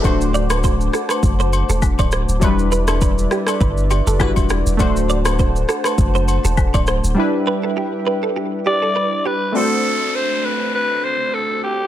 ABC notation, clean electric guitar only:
X:1
M:4/4
L:1/16
Q:"Swing 16ths" 1/4=101
K:Dmix
V:1 name="Clean electric guitar"
z2 d B c z A B z c z A z d c z | z2 B A B z G A B z G A B z G z | z2 d B c z A B z c z A z d c z | z2 B A G z B A G z G A B z G z |
z16 |]